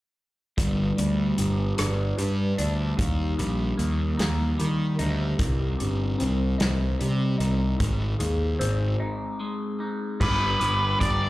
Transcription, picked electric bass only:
0.58 G1
0.99 D2
1.39 G1
1.79 G1
2.19 G2
2.59 D2
2.99 D#2
3.39 A#1
3.79 D#2
4.20 D#2
4.61 D#3
5.00 D2
5.39 C2
5.82 G1
6.22 C2
6.61 C2
7.01 C3
7.40 C2
7.80 G#1
8.20 D#2
8.60 G#1
10.21 G1
10.61 G1
11.01 G1

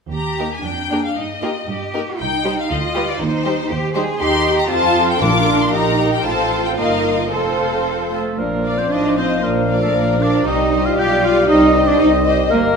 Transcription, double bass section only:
0.12 D#2
0.64 F2
1.16 G2
1.68 G2
2.19 C2
2.70 D2
3.21 D#2
3.70 D#2
4.20 D#2
4.70 F2
5.21 A#1
5.73 A#1
6.25 A1
6.78 G1
7.32 F1
8.39 A#1
8.91 A1
9.43 A#1
9.94 A#1
10.46 C2
10.97 B1
11.48 C2
11.99 C2
12.50 G1

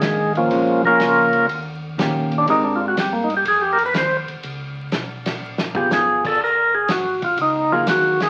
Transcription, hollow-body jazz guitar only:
Already playing: D#3 A#3 D4
0.52 F3 G#3 C#4
1.98 D#3 A#3 C#4 G4
2.48 G#3 C4 G4 A#4
5.76 B3 F4 G#4
7.72 F#3 A#3 D#4 G#4

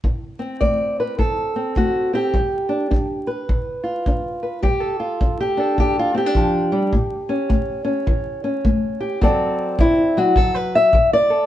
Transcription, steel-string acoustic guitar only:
0.04 D3
0.39 C4
0.61 A3 D5
1.00 B4
1.18 A2 A4
1.56 C4
1.77 A3 F#4
2.13 C4 G4
2.34 G3
2.69 D4
2.91 D4
3.27 B4
3.49 D3
3.84 F4
4.07 D4
4.43 B4
4.63 G3 G4
4.80 A4
5.00 F4
5.21 D4
5.40 G4
5.57 D4 A4
5.78 D3 G4
5.99 F4
6.14 C4 G4
6.26 D4
6.36 F3
6.72 G3
6.93 A2
7.29 C#4
7.49 A3
7.85 C#4
8.07 E3
8.44 C#4
8.65 A3
9.00 G4
9.21 D3 F#3 C4 A4 D5
9.80 F#3 E4
10.17 F#3 F#4
10.37 D3 A4
10.54 B4
10.75 E5
10.94 F#3
11.13 D5
11.30 A4

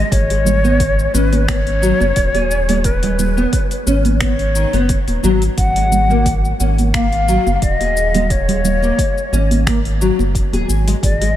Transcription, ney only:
0.05 D#5
0.12 C#5
1.14 B4
1.48 C#5
2.85 B4
4.21 C#5
5.57 F#5
6.94 F5
7.56 F5
7.63 D#5
8.31 C#5
11.03 D5
11.21 D#5

